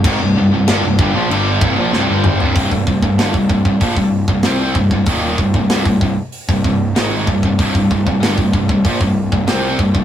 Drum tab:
CC |x---x---x-------|----------------|----------------|----------------|
HH |----------------|o---o---o---o---|o---o---o---o---|o---o---o---o---|
SD |----o-------o---|----o-------o---|----o-------o---|----o-------o---|
T2 |--------------o-|----------------|----------------|----------------|
FT |---------------o|----------------|----------------|----------------|
BD |o-----o---o-----|oooo-ooooo-o--oo|o-oo-oo--oo---oo|oooo-ooooo-o--oo|